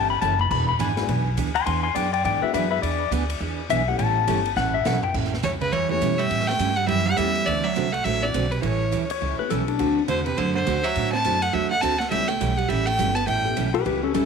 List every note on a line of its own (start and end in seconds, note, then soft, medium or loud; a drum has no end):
0.00 0.21 G1 medium
0.00 0.12 E3 medium
0.00 0.12 G3 medium
0.00 0.13 C#4 medium
0.00 0.13 E4 medium
0.00 0.13 A4 medium
0.10 0.21 B5 loud
0.21 0.50 F#1 loud
0.21 0.33 E3 medium
0.21 0.33 G3 loud
0.21 0.33 C#4 medium
0.21 0.33 E4 medium
0.21 0.33 A4 medium
0.21 0.39 A5 loud
0.21 hi-hat pedal medium
0.39 0.50 B5 medium
0.39 floor tom medium
0.51 0.79 E1 medium
0.51 0.70 E3 medium
0.51 0.71 B3 medium
0.51 0.71 D4 medium
0.51 0.71 G#4 medium
0.51 0.67 B5 loud
0.51 kick medium
0.51 crash medium
0.69 0.80 B5 medium
0.79 1.08 G#1 medium
0.79 0.90 E3 medium
0.79 0.91 B3 medium
0.79 0.91 D4 loud
0.79 0.91 G#4 loud
0.79 1.36 G#5 medium
0.79 hi-hat pedal medium
0.79 ride medium
0.96 1.07 G#3 medium
0.96 1.07 B3 medium
0.96 1.08 D4 medium
0.96 1.08 E4 medium
0.96 1.08 F#4 medium
0.96 snare medium
0.96 ride medium
1.08 1.37 B1 loud
1.08 1.28 E3 medium
1.08 1.28 B3 medium
1.08 1.29 D4 medium
1.08 1.29 G#4 medium
1.08 ride medium
1.37 1.66 D2 medium
1.37 1.48 E3 medium
1.37 1.49 B3 medium
1.37 1.49 D4 loud
1.37 1.49 G#4 medium
1.37 hi-hat pedal medium
1.37 ride medium
1.55 1.65 G#5 medium
1.55 1.65 C6 loud
1.55 ride medium
1.66 1.95 E2 medium
1.66 1.86 E3 medium
1.66 1.86 B3 medium
1.66 1.86 D4 medium
1.66 1.86 G#4 medium
1.66 1.82 G#5 medium
1.66 1.82 C6 loud
1.66 ride medium
1.83 1.94 G#5 medium
1.83 1.95 C6 loud
1.95 2.24 F#2 medium
1.95 2.06 E3 medium
1.95 2.06 B3 medium
1.95 2.07 D4 medium
1.95 2.07 G#4 medium
1.95 2.12 D5 medium
1.95 2.13 G5 medium
1.95 hi-hat pedal medium
1.95 ride medium
2.13 2.24 D5 medium
2.13 2.24 G5 medium
2.13 ride medium
2.24 2.41 G#2 loud
2.24 2.44 E3 medium
2.24 2.44 B3 medium
2.24 2.45 D4 medium
2.24 2.45 G#4 medium
2.24 2.41 D5 medium
2.24 2.42 G5 medium
2.24 ride medium
2.42 2.80 G#3 medium
2.42 2.81 B3 medium
2.42 2.81 D4 medium
2.42 2.81 E4 medium
2.42 2.81 F#4 medium
2.42 2.53 B4 medium
2.42 2.53 E5 medium
2.42 muted upright bass stroke soft
2.54 2.82 F#2 medium
2.54 2.65 E3 medium
2.54 2.65 B3 medium
2.54 2.65 D4 medium
2.54 2.65 G#4 loud
2.54 2.70 B4 medium
2.54 2.70 E5 medium
2.54 hi-hat pedal medium
2.54 ride medium
2.71 2.82 B4 medium
2.71 2.82 E5 medium
2.82 3.11 E2 medium
2.82 3.02 E3 medium
2.82 3.03 B3 medium
2.82 3.03 D4 medium
2.82 3.03 G#4 medium
2.82 3.11 D5 loud
2.82 ride medium
3.11 3.40 D2 loud
3.11 3.23 E3 medium
3.11 3.23 B3 medium
3.11 3.23 D4 medium
3.11 3.23 G#4 loud
3.11 hi-hat pedal medium
3.11 ride medium
3.30 ride medium
3.40 3.69 E2 loud
3.40 3.60 E3 medium
3.40 3.60 B3 medium
3.40 3.60 D4 medium
3.40 3.61 G#4 medium
3.70 3.98 B1 medium
3.70 3.81 E3 medium
3.70 3.81 B3 medium
3.70 3.81 D4 loud
3.70 3.81 G#4 loud
3.70 3.87 E5 loud
3.70 hi-hat pedal medium
3.70 ride medium
3.87 4.25 A3 medium
3.87 4.25 B3 medium
3.87 4.26 C#4 medium
3.87 4.26 E4 medium
3.87 4.26 G4 medium
3.87 3.98 F#5 medium
3.99 4.27 A1 loud
3.99 4.18 E3 medium
3.99 4.18 G3 medium
3.99 4.19 C#4 medium
3.99 4.19 E4 medium
3.99 4.19 A4 medium
3.99 4.55 A5 loud
3.99 ride medium
4.27 4.56 G1 medium
4.27 4.38 E3 medium
4.27 4.38 G3 medium
4.27 4.43 A3 medium
4.27 4.44 B3 medium
4.27 4.39 C#4 loud
4.27 4.44 C#4 medium
4.27 4.39 E4 loud
4.27 4.44 E4 medium
4.27 4.44 G4 medium
4.27 4.39 A4 medium
4.27 hi-hat pedal medium
4.27 ride medium
4.45 ride medium
4.56 4.85 A1 loud
4.56 4.76 E3 medium
4.56 4.76 G3 medium
4.56 4.76 C#4 medium
4.56 4.76 E4 medium
4.56 4.76 A4 medium
4.56 4.74 F#5 loud
4.56 snare medium
4.74 4.85 E5 medium
4.85 5.02 B1 medium
4.85 4.96 E3 medium
4.85 4.96 G3 medium
4.85 4.96 C#4 medium
4.85 4.96 E4 medium
4.85 4.97 A4 loud
4.85 5.03 F#5 medium
4.85 snare loud
4.85 hi-hat pedal medium
5.03 5.15 G5 loud
5.03 muted upright bass stroke soft
5.03 floor tom medium
5.14 5.43 A1 medium
5.14 5.34 E3 medium
5.14 5.34 G3 medium
5.14 5.34 C#4 medium
5.14 5.34 E4 medium
5.14 5.34 A4 medium
5.14 kick medium
5.14 crash medium
5.24 snare soft
5.34 snare soft
5.43 5.72 C#2 medium
5.43 5.54 E3 medium
5.43 5.48 E3 medium
5.43 5.54 G3 medium
5.43 5.54 C#4 medium
5.43 5.54 E4 medium
5.43 5.54 A4 medium
5.43 5.52 C#5 medium
5.43 hi-hat pedal medium
5.43 ride medium
5.61 5.72 C#3 medium
5.61 5.74 B4 medium
5.61 ride medium
5.72 6.01 E2 medium
5.72 5.92 E3 medium
5.72 5.88 E3 medium
5.72 5.92 G3 medium
5.72 5.92 C#4 medium
5.72 5.92 E4 medium
5.72 5.92 A4 medium
5.72 5.90 C#5 medium
5.72 ride soft
5.89 6.19 E3 medium
5.89 6.28 A3 medium
5.89 6.28 B3 medium
5.89 6.29 C#4 medium
5.89 6.29 E4 medium
5.89 6.29 G4 medium
5.89 6.20 C#5 medium
6.01 6.30 B2 medium
6.01 6.12 E3 medium
6.01 6.12 G3 medium
6.01 6.12 C#4 medium
6.01 6.13 E4 medium
6.01 6.13 A4 loud
6.01 hi-hat pedal medium
6.01 ride medium
6.18 6.48 G3 medium
6.18 6.49 E5 loud
6.18 ride medium
6.30 6.59 A2 medium
6.30 6.50 E3 medium
6.30 6.50 G3 medium
6.30 6.50 C#4 medium
6.30 6.50 E4 medium
6.30 6.50 A4 medium
6.30 ride medium
6.40 snare soft
6.47 6.77 A3 medium
6.47 6.78 G5 medium
6.47 snare soft
6.59 6.88 G2 medium
6.59 6.70 E3 medium
6.59 6.70 G3 medium
6.59 6.71 C#4 medium
6.59 6.71 E4 medium
6.59 6.71 A4 medium
6.59 hi-hat pedal medium
6.59 ride medium
6.76 6.86 G3 medium
6.76 6.87 F#5 medium
6.76 ride soft
6.87 7.17 F#2 loud
6.87 7.08 E3 medium
6.87 7.04 G3 medium
6.87 7.08 G3 medium
6.87 7.08 C#4 medium
6.87 7.09 E4 medium
6.87 7.09 A4 medium
6.87 7.08 E5 loud
6.87 ride medium
7.06 7.16 G3 medium
7.06 7.19 F#5 loud
7.17 7.46 E2 medium
7.17 7.29 E3 medium
7.17 7.46 G3 medium
7.17 7.29 G3 medium
7.17 7.47 A3 medium
7.17 7.47 B3 medium
7.17 7.47 C#4 medium
7.17 7.29 C#4 medium
7.17 7.47 E4 medium
7.17 7.29 E4 medium
7.17 7.47 G4 medium
7.17 7.29 A4 medium
7.17 7.48 E5 loud
7.17 hi-hat pedal medium
7.17 ride medium
7.35 ride soft
7.46 7.75 D2 medium
7.46 7.67 D3 medium
7.46 7.64 E3 medium
7.46 7.67 A3 medium
7.46 7.67 C4 medium
7.46 7.67 F#4 medium
7.46 7.67 A4 medium
7.46 7.65 D5 loud
7.46 ride medium
7.64 7.92 F#3 medium
7.64 7.94 E5 medium
7.75 8.04 C2 medium
7.75 7.87 D3 medium
7.75 7.87 A3 medium
7.75 7.87 C4 medium
7.75 7.87 F#4 medium
7.75 7.87 A4 medium
7.75 hi-hat pedal medium
7.75 ride medium
7.92 8.04 A3 medium
7.92 8.06 F#5 medium
7.92 ride medium
8.04 8.33 A1 medium
8.04 8.25 D3 soft
8.04 8.22 F#3 medium
8.04 8.25 A3 medium
8.04 8.25 C4 medium
8.04 8.25 F#4 medium
8.04 8.25 A4 medium
8.04 8.24 E5 loud
8.04 ride medium
8.22 8.51 E3 medium
8.22 8.33 A3 medium
8.22 8.33 C4 medium
8.22 8.33 D4 medium
8.22 8.33 E4 soft
8.22 8.33 F#4 medium
8.22 8.53 D5 medium
8.34 8.62 B1 medium
8.34 8.45 D3 medium
8.34 8.45 A3 medium
8.34 8.45 C4 medium
8.34 8.45 F#4 medium
8.34 8.45 A4 medium
8.34 hi-hat pedal medium
8.34 ride medium
8.51 8.63 C3 medium
8.51 8.62 B4 medium
8.51 ride soft
8.62 8.91 A1 medium
8.62 9.06 E3 medium
8.62 8.83 E3 medium
8.62 8.83 G3 medium
8.62 8.83 C#4 medium
8.62 8.83 E4 medium
8.62 8.83 A4 medium
8.62 9.06 C#5 medium
8.62 ride medium
8.91 9.21 D2 medium
8.91 9.03 E3 medium
8.91 9.03 G3 medium
8.91 9.03 C#4 medium
8.91 9.03 E4 medium
8.91 9.03 A4 medium
8.91 hi-hat pedal medium
8.91 ride medium
9.10 9.39 C#5 loud
9.10 ride medium
9.21 9.38 C#2 medium
9.21 9.41 E3 medium
9.21 9.41 G3 medium
9.21 9.41 C#4 medium
9.21 9.41 E4 medium
9.21 9.41 A4 medium
9.38 9.77 A3 medium
9.38 9.77 B3 medium
9.38 9.77 C#4 medium
9.38 9.77 E4 medium
9.38 9.77 G4 medium
9.38 9.50 B4 medium
9.38 muted upright bass stroke soft
9.50 9.79 B1 medium
9.50 9.61 E3 medium
9.50 9.61 G3 medium
9.50 9.61 C#4 medium
9.50 9.61 E4 medium
9.50 9.67 A4 medium
9.50 9.62 A4 medium
9.50 hi-hat pedal medium
9.50 ride medium
9.68 10.02 D4 loud
9.68 ride soft
9.79 10.08 D2 medium
9.79 9.99 D3 medium
9.79 9.99 A3 medium
9.79 10.60 A3 medium
9.79 9.99 C4 medium
9.79 10.60 C4 medium
9.79 10.60 D4 medium
9.79 10.60 E4 medium
9.79 9.99 F#4 medium
9.79 10.60 F#4 medium
9.79 9.99 A4 medium
9.79 ride medium
10.08 10.37 E2 medium
10.08 10.19 D3 medium
10.08 10.25 D3 medium
10.08 10.19 A3 medium
10.08 10.19 C4 medium
10.08 10.20 F#4 medium
10.08 10.20 A4 medium
10.08 10.25 C5 medium
10.08 hi-hat pedal soft
10.08 ride medium
10.26 10.38 C3 medium
10.26 10.39 B4 medium
10.26 ride soft
10.37 10.66 F#2 medium
10.37 10.57 D3 medium
10.37 10.54 D3 medium
10.37 10.57 A3 medium
10.37 10.57 C4 medium
10.37 10.57 F#4 medium
10.37 10.57 A4 medium
10.37 10.54 C5 loud
10.37 ride soft
10.55 10.84 D3 medium
10.55 10.85 C5 medium
10.66 10.95 D2 medium
10.66 10.77 D3 medium
10.66 10.78 A3 medium
10.66 10.78 C4 medium
10.66 10.78 F#4 medium
10.66 10.78 A4 medium
10.66 hi-hat pedal medium
10.66 ride medium
10.84 11.13 F#3 medium
10.84 11.12 E5 loud
10.84 ride medium
10.95 11.24 A2 medium
10.95 11.15 D3 medium
10.95 11.15 A3 medium
10.95 11.16 C4 medium
10.95 11.16 F#4 medium
10.95 11.16 A4 medium
10.95 ride medium
11.12 11.42 C4 medium
11.12 11.44 A5 loud
11.24 11.53 F#2 medium
11.24 11.35 D3 medium
11.24 11.40 A3 medium
11.24 11.36 A3 medium
11.24 11.40 C4 medium
11.24 11.36 C4 medium
11.24 11.41 D4 medium
11.24 11.41 E4 medium
11.24 11.41 F#4 medium
11.24 11.36 F#4 medium
11.24 11.36 A4 medium
11.24 hi-hat pedal medium
11.24 ride medium
11.42 11.54 A3 medium
11.42 11.55 F#5 medium
11.42 ride medium
11.53 11.82 E2 medium
11.53 11.73 D3 medium
11.53 11.71 F#3 medium
11.53 11.73 A3 medium
11.53 11.73 C4 medium
11.53 11.73 F#4 medium
11.53 11.73 A4 medium
11.53 11.70 E5 loud
11.70 11.82 A3 medium
11.70 11.83 F#5 medium
11.81 12.11 D2 medium
11.81 11.93 D3 medium
11.81 11.93 A3 medium
11.81 12.00 C4 medium
11.81 11.93 C4 medium
11.81 11.94 F#4 medium
11.81 11.94 A4 medium
11.81 12.00 A5 loud
11.81 hi-hat pedal medium
11.81 ride medium
11.99 12.11 A3 medium
11.99 12.09 F#5 medium
11.99 snare soft
12.10 12.40 C#2 medium
12.10 12.31 E3 medium
12.10 12.28 G3 medium
12.10 12.31 G3 medium
12.10 12.27 A3 medium
12.10 12.27 B3 medium
12.10 12.27 C#4 medium
12.10 12.31 C#4 medium
12.10 12.28 E4 medium
12.10 12.31 E4 medium
12.10 12.28 G4 medium
12.10 12.32 A4 medium
12.10 12.30 E5 loud
12.10 ride medium
12.28 12.57 A3 medium
12.28 12.59 G5 medium
12.40 12.69 B1 medium
12.40 12.51 E3 medium
12.40 12.52 G3 medium
12.40 12.52 C#4 medium
12.40 12.52 E4 medium
12.40 12.52 A4 medium
12.40 hi-hat pedal medium
12.40 ride medium
12.57 12.67 G3 medium
12.57 12.70 F#5 medium
12.57 ride soft
12.69 12.98 A1 medium
12.69 12.89 E3 medium
12.69 12.87 G3 medium
12.69 12.89 G3 medium
12.69 12.89 C#4 medium
12.69 12.89 E4 medium
12.69 12.90 A4 medium
12.69 12.88 E5 medium
12.69 ride medium
12.86 13.15 A3 medium
12.86 13.17 G5 loud
12.98 13.27 G1 medium
12.98 13.09 E3 medium
12.98 13.10 G3 medium
12.98 13.14 A3 medium
12.98 13.15 B3 medium
12.98 13.10 C#4 medium
12.98 13.15 C#4 medium
12.98 13.10 E4 medium
12.98 13.15 E4 medium
12.98 13.15 F#4 medium
12.98 13.10 A4 medium
12.98 hi-hat pedal medium
12.98 ride medium
13.15 13.27 B3 medium
13.15 13.27 A5 medium
13.15 ride medium
13.27 13.56 A1 medium
13.27 13.47 E3 medium
13.27 13.47 G3 medium
13.27 13.71 A3 medium
13.27 13.47 C#4 medium
13.27 13.47 E4 medium
13.27 13.47 A4 medium
13.27 13.71 G5 medium
13.27 ride medium
13.44 13.55 A3 medium
13.44 13.55 B3 medium
13.44 13.55 C#4 medium
13.44 13.55 E4 medium
13.44 13.55 G4 medium
13.56 13.85 B1 medium
13.56 13.67 E3 medium
13.56 13.68 G3 medium
13.56 13.68 C#4 medium
13.56 13.68 E4 medium
13.56 13.68 A4 medium
13.56 hi-hat pedal soft
13.56 ride medium
13.74 13.85 G4 medium
13.74 13.85 B4 medium
13.74 ride soft
13.85 14.14 C#2 medium
13.85 14.05 E3 soft
13.85 14.05 G3 medium
13.85 14.05 C#4 medium
13.85 14.05 E4 medium
13.85 14.02 G4 medium
13.85 14.05 A4 medium
13.85 14.03 B4 medium
13.85 ride soft
14.03 14.13 C#4 medium
14.03 14.14 A4 medium
14.14 14.25 D2 medium
14.14 14.25 E3 medium
14.14 14.25 G3 medium
14.14 14.25 C#4 medium
14.14 14.25 E4 medium
14.14 14.25 A4 medium
14.14 hi-hat pedal medium
14.14 ride medium